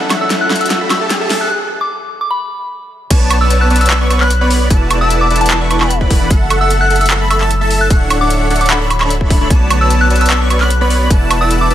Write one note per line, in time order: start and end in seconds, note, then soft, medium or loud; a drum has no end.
0.00 1.49 F#2 medium
0.00 0.18 F#3 medium
0.00 1.49 F#3 medium
0.00 0.18 C#4 medium
0.00 0.18 A4 loud
0.00 0.19 A4 medium
0.00 1.46 A4 medium
0.00 0.18 E5 medium
0.00 0.19 E5 medium
0.00 1.49 E5 medium
0.00 0.18 F#5 loud
0.00 riser medium
0.10 snare medium
0.10 closed hi-hat medium
0.10 high woodblock medium
0.19 1.47 F#3 medium
0.19 1.48 C#4 medium
0.19 0.48 A4 medium
0.19 1.49 A4 medium
0.19 0.48 E5 medium
0.19 1.49 E5 medium
0.19 0.48 F#5 loud
0.19 0.39 E6 medium
0.30 snare medium
0.30 closed hi-hat medium
0.41 0.56 F#6 medium
0.50 0.78 A4 medium
0.50 0.78 E5 medium
0.50 0.78 F#5 loud
0.50 snare medium
0.50 closed hi-hat soft
0.56 closed hi-hat medium
0.61 0.67 E6 medium
0.61 closed hi-hat medium
0.66 closed hi-hat medium
0.70 0.77 E6 medium
0.70 snare medium
0.70 closed hi-hat medium
0.81 0.89 A4 medium
0.81 0.89 E5 medium
0.81 0.89 B5 medium
0.90 0.98 A4 medium
0.90 0.98 E5 medium
0.90 0.98 B5 medium
0.90 1.06 E6 medium
0.90 snare medium
0.90 closed hi-hat medium
0.90 high woodblock medium
1.01 1.11 A4 loud
1.01 1.11 E5 medium
1.01 1.11 A5 loud
1.10 snare medium
1.10 closed hi-hat medium
1.21 1.48 A4 medium
1.21 1.48 E5 medium
1.21 1.48 A5 loud
1.30 snare medium
1.30 open hi-hat loud
1.41 1.47 F#6 medium
1.51 1.57 F#6 medium
1.81 1.96 D6 loud
2.21 2.29 D6 medium
2.31 2.61 B5 medium
3.11 4.69 B1 medium
3.11 3.38 B3 loud
3.11 6.27 B3 medium
3.11 4.69 F#4 medium
3.11 7.87 A4 medium
3.11 3.38 B4 medium
3.11 3.38 C#5 medium
3.11 3.38 D5 medium
3.11 4.69 D5 medium
3.11 3.38 A5 loud
3.11 kick loud
3.11 closed hi-hat medium
3.11 crash loud
3.31 closed hi-hat medium
3.31 high woodblock medium
3.41 3.68 B3 medium
3.41 3.68 B4 medium
3.41 3.68 C#5 medium
3.41 3.68 D5 medium
3.41 3.68 A5 medium
3.41 3.68 A5 loud
3.41 3.59 E6 medium
3.50 closed hi-hat medium
3.61 3.76 F#6 medium
3.70 3.98 B3 loud
3.70 3.98 B4 medium
3.70 3.98 C#5 medium
3.70 3.98 D5 medium
3.70 3.98 A5 loud
3.70 closed hi-hat soft
3.76 closed hi-hat medium
3.81 3.87 E6 medium
3.81 closed hi-hat medium
3.86 closed hi-hat medium
3.90 3.97 E6 medium
3.90 clap loud
3.90 closed hi-hat medium
4.01 4.09 B3 medium
4.01 4.09 B4 medium
4.01 4.09 C#5 medium
4.01 4.09 D5 medium
4.01 4.09 C#6 medium
4.10 4.18 B3 medium
4.10 4.18 B4 medium
4.10 4.18 C#5 medium
4.10 4.18 D5 medium
4.10 4.18 C#6 medium
4.10 closed hi-hat medium
4.10 high woodblock medium
4.21 4.31 B3 loud
4.21 4.31 B4 medium
4.21 4.31 C#5 medium
4.21 4.31 D5 medium
4.21 4.31 B5 loud
4.21 4.36 F#6 medium
4.21 clap soft
4.30 closed hi-hat medium
4.41 4.68 B3 medium
4.41 4.68 B4 medium
4.41 4.68 C#5 medium
4.41 4.68 D5 medium
4.41 4.68 B5 loud
4.50 open hi-hat medium
4.70 6.29 E1 medium
4.70 6.29 E3 medium
4.70 6.29 D4 medium
4.70 4.98 E4 loud
4.70 4.98 B4 medium
4.70 4.98 D5 medium
4.70 4.98 F#5 medium
4.70 4.98 A5 loud
4.70 kick loud
4.70 closed hi-hat medium
4.91 closed hi-hat medium
4.91 high woodblock medium
5.01 5.28 E4 medium
5.01 5.28 B4 medium
5.01 5.28 D5 medium
5.01 5.28 F#5 medium
5.01 5.28 A5 loud
5.01 5.28 A5 medium
5.01 5.16 E6 medium
5.10 closed hi-hat medium
5.21 5.36 D6 medium
5.30 5.58 E4 loud
5.30 5.58 B4 medium
5.30 5.58 D5 medium
5.30 5.58 F#5 medium
5.30 5.58 A5 loud
5.30 closed hi-hat soft
5.36 closed hi-hat medium
5.41 5.97 A5 medium
5.41 closed hi-hat soft
5.46 closed hi-hat medium
5.51 clap loud
5.51 closed hi-hat medium
5.61 5.69 E4 medium
5.61 5.69 B4 medium
5.61 5.69 D5 medium
5.61 5.69 F#5 medium
5.61 5.69 C#6 medium
5.71 5.78 E4 medium
5.71 5.78 B4 medium
5.71 5.78 D5 medium
5.71 5.78 F#5 medium
5.71 5.78 C#6 medium
5.71 5.79 C#6 medium
5.71 closed hi-hat medium
5.71 high woodblock medium
5.81 5.90 E4 loud
5.81 5.90 B4 medium
5.81 5.91 D5 medium
5.81 5.91 F#5 medium
5.81 5.90 B5 loud
5.81 5.91 B5 loud
5.81 clap soft
5.81 high woodblock medium
5.90 closed hi-hat medium
6.01 6.28 E4 medium
6.01 6.28 B4 medium
6.01 6.28 D5 medium
6.01 6.28 F#5 medium
6.01 6.28 B5 loud
6.01 kick medium
6.10 kick loud
6.10 open hi-hat medium
6.30 7.89 F#1 medium
6.30 7.89 F#3 medium
6.30 7.89 E4 medium
6.30 6.58 A4 loud
6.30 9.47 C#5 medium
6.30 6.58 E5 medium
6.30 6.58 F#5 loud
6.30 kick loud
6.30 closed hi-hat medium
6.50 closed hi-hat medium
6.50 high woodblock medium
6.61 6.88 A4 medium
6.61 6.88 E5 medium
6.61 6.88 F#5 medium
6.61 6.88 F#5 loud
6.61 6.79 E6 loud
6.70 closed hi-hat medium
6.81 6.96 F#6 loud
6.90 7.18 A4 loud
6.90 7.18 E5 medium
6.90 7.18 F#5 loud
6.90 closed hi-hat soft
6.96 closed hi-hat medium
7.01 7.07 E6 medium
7.01 closed hi-hat soft
7.06 closed hi-hat medium
7.10 clap loud
7.21 7.29 A4 medium
7.21 7.29 E5 medium
7.21 7.29 B5 medium
7.30 7.38 A4 medium
7.30 7.38 E5 medium
7.30 7.38 B5 medium
7.30 7.46 E6 medium
7.30 closed hi-hat medium
7.30 high woodblock medium
7.41 7.50 A4 loud
7.41 7.51 E5 medium
7.41 7.51 A5 loud
7.41 clap soft
7.51 closed hi-hat medium
7.61 7.88 A4 medium
7.61 7.88 E5 medium
7.61 7.88 A5 loud
7.71 open hi-hat medium
7.81 7.87 F#6 medium
7.90 9.49 D1 medium
7.90 9.49 D3 medium
7.90 9.49 A3 medium
7.90 8.18 D4 loud
7.90 11.07 F#4 medium
7.90 8.18 A4 medium
7.90 8.18 C#5 medium
7.90 8.18 E5 medium
7.90 8.18 F#5 loud
7.90 7.97 F#6 medium
7.90 kick loud
7.90 closed hi-hat medium
8.10 closed hi-hat medium
8.10 high woodblock medium
8.21 8.48 D4 medium
8.21 8.48 A4 medium
8.21 8.48 C#5 medium
8.21 8.48 E5 medium
8.21 8.48 F#5 loud
8.21 8.48 F#5 medium
8.21 8.36 D6 loud
8.30 closed hi-hat medium
8.50 8.78 D4 loud
8.50 8.78 A4 medium
8.50 8.78 C#5 medium
8.50 8.78 E5 medium
8.50 8.78 F#5 loud
8.50 closed hi-hat soft
8.56 closed hi-hat medium
8.61 8.69 D6 medium
8.61 closed hi-hat soft
8.66 closed hi-hat medium
8.70 9.01 B5 medium
8.70 clap loud
8.81 8.89 D4 medium
8.81 8.89 A4 medium
8.81 8.89 C#5 medium
8.81 8.89 E5 medium
8.81 8.89 B5 medium
8.90 closed hi-hat medium
8.90 high woodblock medium
9.01 9.38 D4 medium
9.01 9.38 A4 medium
9.01 9.38 C#5 medium
9.01 9.38 E5 medium
9.01 9.38 B5 medium
9.01 clap soft
9.01 high woodblock medium
9.10 closed hi-hat medium
9.21 kick medium
9.30 kick loud
9.30 open hi-hat medium
9.41 9.48 D4 loud
9.41 9.48 A4 medium
9.41 9.48 C#5 medium
9.41 9.48 E5 medium
9.41 9.48 B5 loud
9.50 11.09 B1 medium
9.50 9.78 B3 loud
9.50 11.09 B3 medium
9.50 11.74 A4 medium
9.50 9.78 B4 medium
9.50 9.78 C#5 medium
9.50 9.78 D5 medium
9.50 11.09 D5 medium
9.50 9.78 A5 loud
9.50 kick loud
9.50 closed hi-hat medium
9.70 closed hi-hat medium
9.70 high woodblock medium
9.81 10.08 B3 medium
9.81 10.08 B4 medium
9.81 10.08 C#5 medium
9.81 10.08 D5 medium
9.81 10.08 A5 loud
9.81 9.99 E6 medium
9.90 closed hi-hat medium
10.01 10.16 F#6 medium
10.10 10.38 B3 loud
10.10 10.38 B4 medium
10.10 10.38 C#5 medium
10.10 10.38 D5 medium
10.10 10.38 A5 loud
10.10 closed hi-hat soft
10.16 closed hi-hat medium
10.21 10.27 E6 medium
10.21 closed hi-hat soft
10.26 closed hi-hat medium
10.30 10.37 E6 medium
10.30 clap loud
10.41 10.49 B3 medium
10.41 10.49 B4 medium
10.41 10.49 C#5 medium
10.41 10.49 D5 medium
10.41 10.49 C#6 medium
10.50 10.58 B3 medium
10.50 10.58 B4 medium
10.50 10.58 C#5 medium
10.50 10.58 D5 medium
10.50 10.58 C#6 medium
10.50 closed hi-hat medium
10.50 high woodblock medium
10.61 10.71 B3 loud
10.61 10.71 B4 medium
10.61 10.71 C#5 medium
10.61 10.71 D5 medium
10.61 10.71 B5 loud
10.61 10.76 F#6 medium
10.61 clap soft
10.70 closed hi-hat medium
10.81 11.08 B3 medium
10.81 11.08 B4 medium
10.81 11.08 C#5 medium
10.81 11.08 D5 medium
10.81 11.08 B5 loud
10.90 open hi-hat medium
11.10 11.74 E1 medium
11.10 11.74 E3 medium
11.10 11.74 B3 medium
11.10 11.74 D4 medium
11.10 11.38 E4 loud
11.10 11.38 B4 medium
11.10 11.38 D5 medium
11.10 11.38 F#5 medium
11.10 11.38 A5 loud
11.10 kick loud
11.10 closed hi-hat medium
11.31 closed hi-hat medium
11.31 high woodblock medium
11.41 11.68 E4 medium
11.41 11.68 B4 medium
11.41 11.68 D5 medium
11.41 11.68 F#5 medium
11.41 11.68 A5 medium
11.41 11.68 A5 loud
11.41 11.56 E6 medium
11.51 closed hi-hat medium
11.61 11.74 D6 medium
11.70 11.74 E4 loud
11.70 11.74 B4 medium
11.70 11.74 D5 medium
11.70 11.74 F#5 medium
11.70 11.74 A5 loud
11.70 closed hi-hat soft